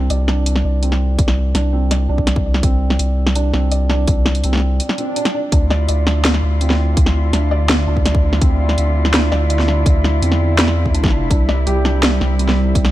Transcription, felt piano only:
0, 0, Header, 1, 2, 480
1, 0, Start_track
1, 0, Tempo, 361446
1, 1575, Time_signature, 4, 2, 24, 8
1, 17150, End_track
2, 0, Start_track
2, 0, Title_t, "Felt piano"
2, 0, Program_c, 0, 0
2, 0, Control_c, 0, 64, 127
2, 0, Note_on_c, 0, 60, 74
2, 135, Note_on_c, 0, 74, 76
2, 352, Note_off_c, 0, 74, 0
2, 376, Note_on_c, 0, 62, 76
2, 604, Note_off_c, 0, 62, 0
2, 1095, Note_off_c, 0, 60, 0
2, 1095, Note_on_c, 0, 60, 70
2, 2031, Note_off_c, 0, 60, 0
2, 2056, Note_on_c, 0, 62, 70
2, 2194, Note_off_c, 0, 62, 0
2, 2296, Note_on_c, 0, 60, 72
2, 2434, Note_off_c, 0, 60, 0
2, 2538, Note_on_c, 0, 74, 75
2, 2753, Note_off_c, 0, 74, 0
2, 2776, Note_on_c, 0, 62, 72
2, 3004, Note_off_c, 0, 62, 0
2, 3494, Note_on_c, 0, 60, 77
2, 4431, Note_off_c, 0, 60, 0
2, 4456, Note_on_c, 0, 62, 80
2, 4594, Note_off_c, 0, 62, 0
2, 4695, Note_on_c, 0, 60, 73
2, 4834, Note_off_c, 0, 60, 0
2, 4933, Note_on_c, 0, 74, 69
2, 5150, Note_off_c, 0, 74, 0
2, 5175, Note_on_c, 0, 62, 71
2, 5403, Note_off_c, 0, 62, 0
2, 5896, Note_on_c, 0, 60, 71
2, 6595, Note_off_c, 0, 60, 0
2, 6615, Note_on_c, 0, 60, 75
2, 6831, Note_off_c, 0, 60, 0
2, 6855, Note_on_c, 0, 62, 75
2, 7071, Note_off_c, 0, 62, 0
2, 7097, Note_on_c, 0, 62, 71
2, 7317, Note_off_c, 0, 62, 0
2, 7337, Note_on_c, 0, 62, 76
2, 7351, Control_c, 0, 64, 0
2, 7475, Note_off_c, 0, 62, 0
2, 7571, Control_c, 0, 64, 127
2, 7576, Note_on_c, 0, 74, 100
2, 7795, Note_off_c, 0, 74, 0
2, 7815, Note_on_c, 0, 74, 75
2, 8031, Note_off_c, 0, 74, 0
2, 8056, Note_on_c, 0, 62, 74
2, 8284, Note_off_c, 0, 62, 0
2, 8776, Note_on_c, 0, 60, 69
2, 9712, Note_off_c, 0, 60, 0
2, 9736, Note_on_c, 0, 62, 73
2, 9874, Note_off_c, 0, 62, 0
2, 9976, Note_on_c, 0, 74, 103
2, 10197, Note_off_c, 0, 74, 0
2, 10217, Note_on_c, 0, 74, 80
2, 10432, Note_off_c, 0, 74, 0
2, 10458, Note_on_c, 0, 62, 75
2, 10684, Note_off_c, 0, 62, 0
2, 11177, Note_on_c, 0, 60, 80
2, 12113, Note_off_c, 0, 60, 0
2, 12135, Note_on_c, 0, 62, 78
2, 12274, Note_off_c, 0, 62, 0
2, 12373, Note_on_c, 0, 74, 101
2, 12593, Note_off_c, 0, 74, 0
2, 12613, Note_on_c, 0, 74, 71
2, 12830, Note_off_c, 0, 74, 0
2, 12852, Note_on_c, 0, 62, 70
2, 13081, Note_off_c, 0, 62, 0
2, 13573, Note_on_c, 0, 60, 75
2, 14510, Note_off_c, 0, 60, 0
2, 14533, Note_on_c, 0, 62, 71
2, 14750, Note_off_c, 0, 62, 0
2, 14773, Note_on_c, 0, 62, 69
2, 14990, Note_off_c, 0, 62, 0
2, 15014, Note_on_c, 0, 62, 80
2, 15029, Control_c, 0, 64, 0
2, 15153, Note_off_c, 0, 62, 0
2, 15233, Control_c, 0, 64, 127
2, 15254, Note_on_c, 0, 74, 97
2, 15483, Note_off_c, 0, 74, 0
2, 15493, Note_on_c, 0, 67, 103
2, 15633, Note_off_c, 0, 67, 0
2, 15735, Note_on_c, 0, 62, 71
2, 15963, Note_off_c, 0, 62, 0
2, 16456, Note_on_c, 0, 60, 70
2, 17150, Note_off_c, 0, 60, 0
2, 17150, End_track
0, 0, End_of_file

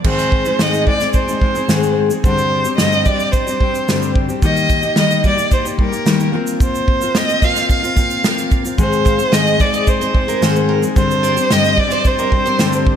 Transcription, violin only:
0, 0, Header, 1, 2, 480
1, 0, Start_track
1, 0, Tempo, 545455
1, 43, Time_signature, 4, 2, 24, 8
1, 11405, End_track
2, 0, Start_track
2, 0, Title_t, "Violin"
2, 0, Program_c, 0, 40
2, 55, Note_on_c, 0, 72, 86
2, 544, Note_on_c, 0, 75, 89
2, 557, Note_off_c, 0, 72, 0
2, 772, Note_off_c, 0, 75, 0
2, 777, Note_on_c, 0, 74, 88
2, 996, Note_off_c, 0, 74, 0
2, 1017, Note_on_c, 0, 72, 72
2, 1699, Note_off_c, 0, 72, 0
2, 1983, Note_on_c, 0, 72, 92
2, 2424, Note_off_c, 0, 72, 0
2, 2446, Note_on_c, 0, 75, 95
2, 2690, Note_on_c, 0, 74, 85
2, 2703, Note_off_c, 0, 75, 0
2, 2923, Note_on_c, 0, 72, 79
2, 2937, Note_off_c, 0, 74, 0
2, 3649, Note_off_c, 0, 72, 0
2, 3905, Note_on_c, 0, 75, 101
2, 4346, Note_off_c, 0, 75, 0
2, 4391, Note_on_c, 0, 75, 101
2, 4606, Note_off_c, 0, 75, 0
2, 4642, Note_on_c, 0, 74, 87
2, 4852, Note_off_c, 0, 74, 0
2, 4869, Note_on_c, 0, 72, 78
2, 4974, Note_off_c, 0, 72, 0
2, 5117, Note_on_c, 0, 70, 68
2, 5552, Note_off_c, 0, 70, 0
2, 5838, Note_on_c, 0, 72, 82
2, 6313, Note_on_c, 0, 75, 93
2, 6327, Note_off_c, 0, 72, 0
2, 6549, Note_on_c, 0, 77, 99
2, 6562, Note_off_c, 0, 75, 0
2, 6780, Note_off_c, 0, 77, 0
2, 6786, Note_on_c, 0, 77, 81
2, 7462, Note_off_c, 0, 77, 0
2, 7741, Note_on_c, 0, 72, 88
2, 8212, Note_on_c, 0, 75, 101
2, 8225, Note_off_c, 0, 72, 0
2, 8457, Note_on_c, 0, 74, 88
2, 8470, Note_off_c, 0, 75, 0
2, 8698, Note_on_c, 0, 72, 77
2, 8711, Note_off_c, 0, 74, 0
2, 9411, Note_off_c, 0, 72, 0
2, 9658, Note_on_c, 0, 72, 95
2, 10135, Note_on_c, 0, 75, 106
2, 10149, Note_off_c, 0, 72, 0
2, 10379, Note_on_c, 0, 74, 95
2, 10392, Note_off_c, 0, 75, 0
2, 10618, Note_on_c, 0, 72, 87
2, 10631, Note_off_c, 0, 74, 0
2, 11329, Note_off_c, 0, 72, 0
2, 11405, End_track
0, 0, End_of_file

